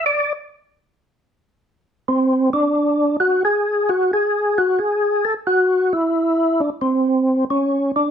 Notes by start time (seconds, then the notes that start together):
0.06 D5
2.08 C4
2.53 D4
3.20 F#4
3.45 G#4
3.89 F#4
4.13 G#4
4.58 F#4
4.79 G#4
5.25 A4
5.47 F#4
5.93 E4
6.60 D4
6.81 C4
7.50 C#4
7.96 D4